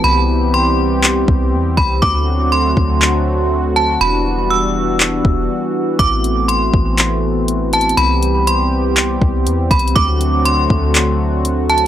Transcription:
0.00 1.99 E3 medium
0.00 1.99 B3 medium
0.00 3.97 C4 medium
0.04 1.24 C2 loud
0.04 2.01 G3 medium
0.04 2.01 G4 medium
0.04 0.51 B5 loud
0.54 1.74 C6 medium
1.04 clap loud
1.28 1.55 C2 loud
1.28 kick medium
1.53 1.77 E2 loud
1.77 2.01 C2 loud
1.77 2.01 B5 medium
1.77 kick loud
2.02 2.74 D2 loud
2.02 3.99 D3 medium
2.02 3.99 F#3 medium
2.02 3.99 A3 medium
2.02 7.94 F#4 medium
2.02 2.49 D6 medium
2.02 kick loud
2.52 3.72 C6 medium
2.77 3.97 D2 loud
2.77 kick medium
3.02 clap loud
3.76 4.00 A5 medium
4.01 5.21 E1 loud
4.01 9.92 E3 medium
4.01 5.97 G3 medium
4.01 9.92 B3 medium
4.01 5.97 D4 medium
4.01 4.48 B5 loud
4.50 5.95 E6 medium
5.00 clap loud
5.25 5.49 E1 loud
5.25 kick medium
5.99 6.71 A1 loud
5.99 7.96 A3 medium
5.99 11.87 C4 medium
5.99 6.46 D6 loud
5.99 kick loud
5.99 closed hi-hat medium
6.24 closed hi-hat medium
6.48 7.69 C6 medium
6.48 closed hi-hat medium
6.74 7.94 A1 loud
6.74 kick loud
6.98 clap loud
6.98 closed hi-hat medium
7.48 closed hi-hat medium
7.73 7.97 A5 medium
7.73 closed hi-hat medium
7.81 closed hi-hat medium
7.89 closed hi-hat medium
7.97 9.18 C2 loud
7.97 9.94 G3 medium
7.97 9.94 G4 medium
7.97 8.44 B5 loud
7.97 closed hi-hat medium
8.23 closed hi-hat medium
8.47 9.67 C6 medium
8.47 closed hi-hat medium
8.97 clap loud
8.97 closed hi-hat medium
9.22 9.48 C2 loud
9.22 kick loud
9.46 9.70 E2 loud
9.46 closed hi-hat medium
9.71 9.95 C2 loud
9.71 9.94 B5 medium
9.71 kick medium
9.71 closed hi-hat medium
9.79 closed hi-hat medium
9.88 closed hi-hat medium
9.96 10.67 D2 loud
9.96 11.87 D3 medium
9.96 11.87 F#3 medium
9.96 11.87 A3 medium
9.96 11.87 F#4 medium
9.96 10.42 D6 loud
9.96 kick loud
9.96 closed hi-hat medium
10.21 closed hi-hat medium
10.45 11.65 C6 medium
10.45 closed hi-hat medium
10.70 11.87 D2 loud
10.70 kick medium
10.95 clap loud
10.95 closed hi-hat medium
11.45 closed hi-hat medium
11.70 11.87 A5 medium
11.70 closed hi-hat medium
11.78 closed hi-hat medium

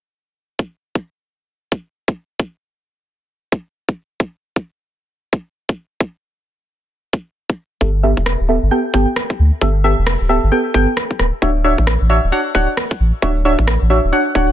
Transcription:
0.59 kick loud
0.95 kick medium
1.72 kick loud
2.08 kick loud
2.40 kick loud
3.52 kick loud
3.89 kick medium
4.20 kick loud
4.56 kick medium
5.33 kick loud
5.69 kick loud
6.00 kick loud
7.13 kick loud
7.50 kick medium
7.81 8.14 G1 medium
7.81 7.89 B3 medium
7.81 7.89 G4 medium
7.81 7.89 A4 medium
7.81 7.89 E5 medium
7.81 kick loud
8.03 8.12 B3 medium
8.03 8.12 G4 medium
8.03 8.12 A4 medium
8.03 8.12 E5 loud
8.17 8.36 E1 medium
8.17 kick medium
8.26 cross-stick loud
8.40 8.58 D1 medium
8.49 8.57 B3 medium
8.49 8.57 G4 medium
8.49 8.57 A4 medium
8.49 8.57 E5 loud
8.62 8.70 G1 medium
8.71 8.80 B3 medium
8.71 8.80 G4 medium
8.71 8.80 A4 medium
8.71 8.80 G5 loud
8.94 9.06 G1 medium
8.94 9.07 B3 loud
8.94 9.07 G4 medium
8.94 9.07 A4 medium
8.94 9.07 G5 loud
8.94 kick loud
9.16 cross-stick loud
9.30 kick loud
9.39 9.51 D2 medium
9.61 9.94 G1 loud
9.61 9.70 B3 medium
9.61 9.70 G4 medium
9.61 9.70 A4 medium
9.61 9.70 E5 medium
9.61 kick loud
9.84 9.92 B3 medium
9.84 9.92 G4 medium
9.84 9.92 A4 medium
9.84 9.92 E5 loud
9.98 10.16 E1 medium
10.07 cross-stick loud
10.21 10.39 D1 medium
10.29 10.38 B3 medium
10.29 10.38 G4 medium
10.29 10.38 A4 medium
10.29 10.38 E5 loud
10.43 10.51 G1 medium
10.52 10.60 B3 loud
10.52 10.60 G4 medium
10.52 10.60 A4 medium
10.52 10.60 G5 loud
10.74 10.86 G1 medium
10.74 10.88 B3 loud
10.74 10.88 G4 medium
10.74 10.88 A4 medium
10.74 10.88 G5 loud
10.74 kick loud
10.97 cross-stick loud
11.11 kick medium
11.19 11.31 D1 medium
11.19 cross-stick medium
11.42 11.75 D1 loud
11.42 11.50 D4 medium
11.42 11.50 F#4 medium
11.42 11.50 C#5 medium
11.42 11.50 E5 medium
11.42 kick loud
11.64 11.73 D4 medium
11.64 11.73 F#4 medium
11.64 11.73 C#5 medium
11.64 11.73 E5 loud
11.78 11.97 A1 medium
11.78 kick medium
11.87 cross-stick loud
12.01 12.19 A1 medium
12.10 12.18 D4 medium
12.10 12.18 F#4 medium
12.10 12.18 C#5 medium
12.10 12.18 E5 loud
12.23 12.31 D1 medium
12.32 12.41 D4 medium
12.32 12.41 F#4 medium
12.32 12.41 C#5 medium
12.32 12.41 F#5 loud
12.55 12.66 D1 medium
12.55 12.68 D4 loud
12.55 12.68 F#4 medium
12.55 12.68 C#5 medium
12.55 12.68 F#5 loud
12.55 kick loud
12.77 cross-stick loud
12.91 kick loud
13.00 13.12 A1 medium
13.22 13.55 D1 loud
13.22 13.31 D4 medium
13.22 13.31 F#4 medium
13.22 13.31 C#5 medium
13.22 13.31 E5 medium
13.22 kick loud
13.45 13.53 D4 loud
13.45 13.53 F#4 medium
13.45 13.53 C#5 medium
13.45 13.53 E5 loud
13.59 13.77 A1 medium
13.59 kick medium
13.68 cross-stick loud
13.81 14.00 A1 medium
13.90 13.98 D4 medium
13.90 13.98 F#4 medium
13.90 13.98 C#5 medium
13.90 13.98 E5 loud
14.04 14.11 D1 medium
14.13 14.21 D4 medium
14.13 14.21 F#4 medium
14.13 14.21 C#5 medium
14.13 14.21 F#5 loud
14.35 14.52 D1 medium
14.35 14.49 D4 medium
14.35 14.49 F#4 medium
14.35 14.49 C#5 medium
14.35 14.49 F#5 loud
14.35 kick loud

